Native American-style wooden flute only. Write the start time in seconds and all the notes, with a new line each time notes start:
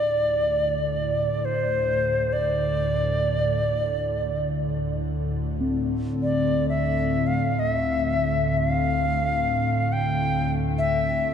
Already playing: D5
1.45 C5
2.33 D5
6.23 D5
6.69 E5
7.27 F5
7.59 D#5
7.70 E5
8.57 E5
8.69 F5
9.92 G5
10.78 E5